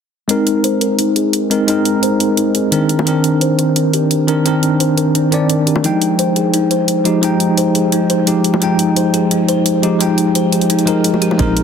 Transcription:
0.28 tine electric piano G#3 C4 D#4 A#4, kalimba D#4, closed hi-hat
0.47 closed hi-hat
0.64 kalimba C5, closed hi-hat
0.81 kalimba A#4, closed hi-hat
0.99 kalimba D#4, closed hi-hat
1.16 kalimba G#4, closed hi-hat
1.33 closed hi-hat
1.50 tine electric piano G#3 C4 D#4 A#4, closed hi-hat
1.67 tine electric piano G#3 C4 D#4 A#4, kalimba D#4, closed hi-hat
1.85 closed hi-hat
2.03 kalimba C5, closed hi-hat
2.20 kalimba A#4, closed hi-hat
2.37 kalimba D#4, closed hi-hat
2.55 kalimba G#4, closed hi-hat
2.71 tine electric piano D#3 C4 D4 A#4, closed hi-hat
2.89 closed hi-hat
2.99 high bongo
3.05 tine electric piano D#3 C4 D4 A#4, kalimba D4, closed hi-hat
3.24 closed hi-hat
3.41 kalimba C5, closed hi-hat
3.59 kalimba A#4, closed hi-hat
3.76 kalimba D4, closed hi-hat
3.94 kalimba G4, closed hi-hat
4.11 closed hi-hat
4.27 tine electric piano D#3 C4 D4 A#4, closed hi-hat
4.44 tine electric piano D#3 C4 D4 A#4, kalimba D4, closed hi-hat
4.63 closed hi-hat
4.80 kalimba C5, closed hi-hat
4.97 kalimba A#4, closed hi-hat
5.15 kalimba D4, closed hi-hat
5.31 tine electric piano D#3 C4 D4 D5, kalimba A#4, closed hi-hat
5.50 closed hi-hat
5.67 kalimba G4, closed hi-hat
5.76 high bongo
5.83 tine electric piano F3 G#3 D#4 G5, kalimba D#4, closed hi-hat
6.02 closed hi-hat
6.19 kalimba C5, closed hi-hat
6.36 kalimba G#4, closed hi-hat
6.54 kalimba D#4, closed hi-hat
6.71 kalimba C5, closed hi-hat
6.88 closed hi-hat
7.05 tine electric piano F3 G#3 D#4 G4, closed hi-hat
7.21 tine electric piano F3 G#3 D#4 G5, kalimba D#4, closed hi-hat
7.40 closed hi-hat
7.57 kalimba C5, closed hi-hat
7.75 kalimba G#4, closed hi-hat
7.92 kalimba D#4, closed hi-hat
8.10 kalimba C5, closed hi-hat
8.26 tine electric piano F3 G#3 D#4 G4, closed hi-hat
8.44 closed hi-hat
8.54 high bongo
8.60 tine electric piano F3 G#3 D#4 G5, kalimba D#4, closed hi-hat
8.79 closed hi-hat
8.96 kalimba C5, closed hi-hat
9.14 kalimba G#4, closed hi-hat
9.31 kalimba D#4, closed hi-hat
9.48 kalimba C5, closed hi-hat
9.66 closed hi-hat
9.82 tine electric piano F3 G#3 D#4 G4, closed hi-hat
9.99 tine electric piano F3 G#3 D#4 G5, kalimba D#4, closed hi-hat
10.18 closed hi-hat
10.35 kalimba C5, closed hi-hat
10.52 kalimba G#4, closed hi-hat
10.61 closed hi-hat
10.70 kalimba D#4, closed hi-hat
10.79 closed hi-hat
10.86 tine electric piano F3 G#3 D#4 A#4, kalimba G#4, closed hi-hat
11.04 closed hi-hat
11.14 high bongo
11.22 kalimba G4, closed hi-hat
11.31 high bongo
11.38 detuned saw bass A#1, tine electric piano G#3 C4 D#4 A#4, kalimba D#4, kick, closed hi-hat
11.57 closed hi-hat

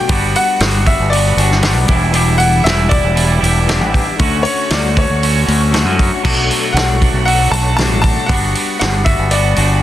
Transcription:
Already playing: clean electric guitar D4, upright piano G5, tonewheel organ B5
0.08 fingered electric bass G1, clean electric guitar G3 B3 D4 F#4, tonewheel organ G3 F#5, kick, open hi-hat
0.35 clean electric guitar B3 D4 F#4, upright piano F#5, open hi-hat
0.60 fingered electric bass G1, clean electric guitar G3 B3 D4 F#4, snare, open hi-hat
0.86 clean electric guitar B3 D4 F#4, upright piano E5, kick, open hi-hat
1.00 fingered electric bass G1
1.10 clean electric guitar G3 B3, upright piano D5, open hi-hat
1.15 clean electric guitar D4 F#4
1.37 fingered electric bass G1, clean electric guitar D4 F#4, open hi-hat
1.41 clean electric guitar B3
1.51 snare
1.63 clean electric guitar G3 B3 D4, snare, open hi-hat
1.67 clean electric guitar F#4
1.75 fingered electric bass B1
1.87 fingered electric bass E1, clean electric guitar E3 G3 B3 D4 E4 G4, tonewheel organ E5 D6, kick, open hi-hat
1.91 clean electric guitar E2 B2
2.12 clean electric guitar E2 B2 E3 G3 B3 D4 E4 G4, open hi-hat
2.38 clean electric guitar G3 D4 E4, upright piano F#5, open hi-hat
2.42 clean electric guitar E3
2.64 fingered electric bass E1, clean electric guitar E3 G3 B3 D4 E4 G4, upright piano E5, snare, open hi-hat
2.89 clean electric guitar E3 G3 D4 E4, upright piano D5, kick, open hi-hat
3.04 fingered electric bass E1
3.14 clean electric guitar E2 B2 E3 G3 D4 E4, open hi-hat
3.41 fingered electric bass E1, clean electric guitar E3 G3 B3 D4 E4 G4, open hi-hat
3.67 clean electric guitar E3 G3 B3 D4 E4 G4, snare, open hi-hat
3.81 fingered electric bass A1
3.92 clean electric guitar B3 D4 G4, kick, open hi-hat
4.19 fingered electric bass D2, clean electric guitar D3 A3 C#4 F#4, tonewheel organ F#4 C#5 C#6, kick, open hi-hat
4.43 clean electric guitar C#4 F#4, upright piano C#5, open hi-hat
4.47 clean electric guitar A3
4.69 fingered electric bass D2, clean electric guitar D3 A3 C#4, upright piano D5, snare, open hi-hat
4.74 clean electric guitar F#4
4.95 clean electric guitar A3 C#4 F#4, upright piano C#5, kick, open hi-hat
5.10 fingered electric bass D2
5.22 clean electric guitar D3 A3 C#4 F#4, open hi-hat
5.46 fingered electric bass D2, clean electric guitar A3 C#4 F#4, open hi-hat
5.73 clean electric guitar D3 A3 C#4 F#4, snare, open hi-hat
5.85 fingered electric bass F#2
5.98 clean electric guitar A3 C#4 F#4, kick, open hi-hat
6.22 fingered electric bass B1, clean electric guitar B2 F#3 A3 D4 F#4, tonewheel organ A4 B5, kick, crash
6.50 clean electric guitar A3 D4 F#4, open hi-hat
6.73 fingered electric bass B1, clean electric guitar F#3, upright piano F#5, open hi-hat
6.77 clean electric guitar A3 D4 F#4, snare
7.00 clean electric guitar A3 D4 F#4, kick, open hi-hat
7.14 fingered electric bass B1
7.25 clean electric guitar B2 F#3 A3 D4 F#4, upright piano F#5, open hi-hat
7.51 fingered electric bass B1, clean electric guitar A3 D4 F#4, upright piano A5, open hi-hat
7.77 clean electric guitar B2 F#3, upright piano A5, snare, open hi-hat
7.81 clean electric guitar A3 D4 F#4
7.91 fingered electric bass A1
8.02 clean electric guitar D4 F#4, upright piano A5, kick, open hi-hat
8.06 clean electric guitar A3
8.26 fingered electric bass G1, clean electric guitar G3, upright piano F#5, tonewheel organ F#5 B5, kick, open hi-hat
8.31 clean electric guitar B3 D4 F#4
8.55 clean electric guitar B3 D4 F#4, open hi-hat
8.79 fingered electric bass G1, clean electric guitar G3 B3 D4 F#4, upright piano F#5, snare, open hi-hat
9.05 clean electric guitar D4 F#4, upright piano E5, kick, open hi-hat
9.10 clean electric guitar B3
9.19 fingered electric bass G1
9.31 clean electric guitar G3 B3 D4 F#4, upright piano D5, open hi-hat
9.56 fingered electric bass G1, clean electric guitar B3 D4 F#4, open hi-hat

